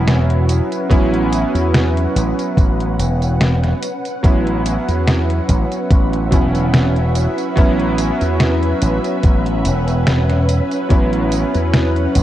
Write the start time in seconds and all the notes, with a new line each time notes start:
Already playing: E1 F#3 B3 C#4 E4 B4 F#5
0.08 snare, closed hi-hat, tambourine
0.30 closed hi-hat
0.49 closed hi-hat, tambourine
0.72 closed hi-hat, tambourine
0.90 A1 F#3 B3 C#4 E4, kick, closed hi-hat, tambourine
1.14 closed hi-hat
1.33 closed hi-hat, tambourine
1.55 E2, closed hi-hat, tambourine
1.74 snare, closed hi-hat, tambourine
1.97 closed hi-hat
2.16 A1, closed hi-hat, tambourine
2.39 closed hi-hat, tambourine
2.57 A1, kick, closed hi-hat, tambourine
2.80 closed hi-hat
2.99 E1, closed hi-hat, tambourine
3.22 closed hi-hat, tambourine
3.41 snare, closed hi-hat, tambourine
3.64 snare, closed hi-hat
3.82 E5, closed hi-hat, tambourine
4.05 closed hi-hat, tambourine
4.23 A1 F#3 B3 C#4 E4, kick, closed hi-hat, tambourine
4.47 closed hi-hat
4.66 closed hi-hat, tambourine
4.88 E2, closed hi-hat, tambourine
5.07 snare, closed hi-hat, tambourine
5.30 closed hi-hat
5.49 A1, kick, closed hi-hat, tambourine
5.72 closed hi-hat, tambourine
5.91 A1, kick, closed hi-hat, tambourine
6.13 closed hi-hat
6.31 E1 F#3 B3 C#4 E4, kick, closed hi-hat, tambourine
6.55 closed hi-hat, tambourine
6.74 snare, closed hi-hat, tambourine
6.96 closed hi-hat
7.15 closed hi-hat, tambourine
7.38 closed hi-hat, tambourine
7.56 A1 F#3 B3 C#4 E4, kick, closed hi-hat, tambourine
7.80 closed hi-hat
7.98 closed hi-hat, tambourine
8.21 E2, closed hi-hat, tambourine
8.40 snare, closed hi-hat, tambourine
8.63 closed hi-hat
8.82 A1, closed hi-hat, tambourine
9.04 closed hi-hat, tambourine
9.23 A1, kick, closed hi-hat, tambourine
9.46 closed hi-hat
9.65 E1, closed hi-hat, tambourine
9.88 closed hi-hat, tambourine
10.07 snare, closed hi-hat, tambourine
10.30 snare, closed hi-hat
10.49 closed hi-hat, tambourine
10.71 closed hi-hat, tambourine
10.89 A1 F#3 B3 C#4 E4 F#5, kick, closed hi-hat, tambourine
11.13 closed hi-hat
11.32 closed hi-hat, tambourine
11.55 E2, closed hi-hat, tambourine
11.74 snare, closed hi-hat, tambourine
11.96 closed hi-hat
12.15 A1, kick, closed hi-hat, tambourine